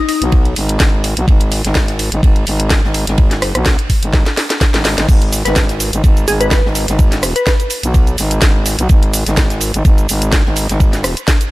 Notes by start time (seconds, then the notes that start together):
0.08 D#4, open hi-hat, ride
0.22 B1, closed hi-hat, ride
0.32 kick, ride
0.45 closed hi-hat
0.56 G#1, open hi-hat, ride
0.69 closed hi-hat
0.80 G#1, kick, snare, ride
1.04 open hi-hat, ride
1.17 B1, closed hi-hat
1.28 G#1, kick, ride
1.40 closed hi-hat, ride
1.52 open hi-hat, ride
1.64 G#1, snare, closed hi-hat
1.75 kick, snare, ride
1.88 snare, closed hi-hat
1.99 open hi-hat, ride
2.12 G#1, closed hi-hat
2.23 G#1, kick, ride
2.36 closed hi-hat
2.47 G#1, open hi-hat, ride
2.60 closed hi-hat
2.70 kick, snare, ride
2.84 G#1, snare
2.94 open hi-hat, ride
3.07 G#1, snare, closed hi-hat
3.18 kick, ride
3.31 snare, closed hi-hat
3.42 cross-stick, open hi-hat, ride
3.55 B1, cross-stick, closed hi-hat
3.66 kick, snare, ride
3.78 closed hi-hat, ride
3.90 kick, open hi-hat, ride
4.03 G#1, closed hi-hat, ride
4.13 kick, snare, ride
4.26 snare, closed hi-hat
4.37 snare, open hi-hat, ride
4.50 snare, closed hi-hat
4.61 kick, snare, ride
4.73 G#1, snare, closed hi-hat, ride
4.84 snare, open hi-hat, ride
4.97 G#1, snare, closed hi-hat, ride
5.08 G#1, kick, crash, ride, shaker
5.22 closed hi-hat, ride
5.33 open hi-hat, ride, shaker
5.45 G#1 B4, snare, closed hi-hat, shaker
5.56 kick, snare, ride, shaker
5.69 snare, closed hi-hat, shaker
5.80 open hi-hat, ride, shaker
5.93 G#1, closed hi-hat, shaker
6.04 G#1, kick, ride, shaker
6.17 closed hi-hat, shaker
6.28 G#1 G#4, open hi-hat, ride, shaker
6.41 B4, closed hi-hat, shaker
6.51 B4, kick, snare, ride, shaker
6.64 G#1, snare
6.75 open hi-hat, ride, shaker
6.88 G#1, snare, closed hi-hat, shaker
6.99 kick, ride, shaker
7.12 snare, closed hi-hat, shaker
7.23 cross-stick, open hi-hat, ride, shaker
7.36 B4, closed hi-hat, shaker
7.47 B4, kick, snare, ride, shaker
7.60 closed hi-hat, ride, shaker
7.70 open hi-hat, ride, shaker
7.83 B1, closed hi-hat, ride, shaker
7.94 kick, ride, shaker
8.07 closed hi-hat, shaker
8.18 G#1, open hi-hat, ride, shaker
8.31 closed hi-hat, shaker
8.41 G#1, kick, snare, ride, shaker
8.66 open hi-hat, ride, shaker
8.79 B1, closed hi-hat, shaker
8.89 G#1, kick, ride, shaker
9.02 closed hi-hat, ride
9.13 open hi-hat, ride, shaker
9.26 G#1, snare, closed hi-hat, shaker
9.37 kick, snare, ride, shaker
9.50 snare, closed hi-hat, shaker
9.60 open hi-hat, ride, shaker
9.74 G#1, closed hi-hat, shaker
9.85 G#1, kick, ride, shaker
9.98 closed hi-hat, shaker
10.09 G#1, open hi-hat, ride, shaker
10.22 closed hi-hat, shaker
10.32 kick, snare, ride, shaker
10.45 G#1, snare
10.56 open hi-hat, ride, shaker
10.69 G#1, snare, closed hi-hat, shaker
10.80 kick, ride, shaker
10.93 snare, closed hi-hat, shaker
11.04 cross-stick, open hi-hat, ride, shaker
11.17 closed hi-hat, shaker
11.27 kick, snare, ride, shaker
11.41 closed hi-hat, ride, shaker